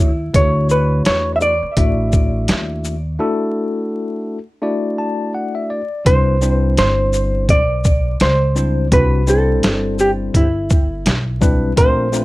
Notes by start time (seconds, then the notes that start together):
Already playing: D#2 E4
0.33 D2 A3 D4 E4 F#4 B4 C#5, kick, closed hi-hat
0.41 C#5
0.70 B4, shaker
1.05 E2 C#5, snare, closed hi-hat
1.36 E5
1.41 D5, shaker
1.63 muted upright bass stroke
1.76 A1 A3 D4 E4 F#4 E5, kick, closed hi-hat
2.12 kick, shaker
2.48 D#2, snare, closed hi-hat
2.85 shaker
3.19 A3 D4 E4 F#4 A4
4.62 A3 D4 E4 F#4 D5
4.98 A5
5.34 F#5
5.55 E5
5.70 D5
6.05 C2 G3 C4 D4 E4 B4 C5, kick, closed hi-hat
6.41 G3 C4 D4 E4 C5, shaker
6.54 B4
6.77 G1 C5, snare, closed hi-hat
7.13 shaker
7.49 B1 D5, kick, closed hi-hat
7.84 kick, shaker
8.20 C#2 C5, snare, closed hi-hat
8.55 G3 C4 D4 E4 C5, shaker
8.92 C2 G3 C4 D4 E4 F#4 B4, kick, closed hi-hat
9.27 G3 C4 D4 E4 A4 C5, shaker
9.63 G1, snare, closed hi-hat
9.99 G4, shaker
10.34 G1 E4, kick, closed hi-hat
10.70 kick, shaker
11.06 B1, snare, closed hi-hat
11.41 G3 C4 D4 E4 B4, kick, shaker
11.76 A#1 A3 C4 D4 F4 A#4 C5, kick, closed hi-hat
12.12 A3 C4 D4 F4 C5, shaker